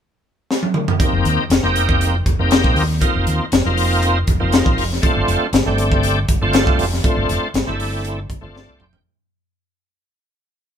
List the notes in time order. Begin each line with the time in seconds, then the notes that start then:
0.51 snare
0.63 high tom
0.74 mid tom
0.88 floor tom
0.99 A#3 C4 D#4 G4, muted fretless electric bass stroke, kick, closed hi-hat
1.13 F1
1.25 D#2, closed hi-hat
1.38 muted fretless electric bass stroke
1.50 F1, snare, closed hi-hat
1.63 F1 A#3 C4 D#4 G4
1.76 closed hi-hat
1.89 kick
2.01 closed hi-hat
2.26 F1, kick, closed hi-hat
2.39 F1 A#3 C4 D#4 G4
2.51 snare, closed hi-hat
2.64 A#1, kick
2.76 D#2, open hi-hat
3.01 A#3 C4 D#4 F4, muted fretless electric bass stroke, kick, closed hi-hat
3.15 F1
3.27 D#2, closed hi-hat
3.40 muted fretless electric bass stroke
3.52 F1, snare, closed hi-hat
3.65 F1 A#3 C4 D#4 F4
3.77 open hi-hat
4.03 closed hi-hat
4.27 F1, kick, closed hi-hat
4.40 F1 A#3 C4 D#4 F4
4.52 snare, closed hi-hat
4.66 A#1, kick
4.78 F1, open hi-hat
4.93 snare
5.02 A3 C4 D4 F4, muted fretless electric bass stroke, kick, closed hi-hat
5.17 G1
5.28 F1, closed hi-hat
5.41 muted fretless electric bass stroke
5.53 G1, snare, closed hi-hat
5.66 G1 A3 C4 D4 G4
5.78 closed hi-hat
5.92 kick
6.03 closed hi-hat
6.28 G1, kick, closed hi-hat
6.42 G1 A3 C4 D4 F4
6.53 snare, closed hi-hat
6.67 C2, kick
6.78 F1, open hi-hat
6.93 snare
7.03 A3 C4 D4 F4, muted fretless electric bass stroke, kick, closed hi-hat
7.17 G1
7.29 F1, closed hi-hat
7.42 muted fretless electric bass stroke
7.54 G1, snare, closed hi-hat
7.66 G1 A3 C4 D4 E4
7.80 open hi-hat
8.05 closed hi-hat
8.30 G1, kick, closed hi-hat
8.41 G1 A3 C4 D4 F4
8.55 D5, snare
8.68 C2
8.79 F1 G5, mid tom
8.93 floor tom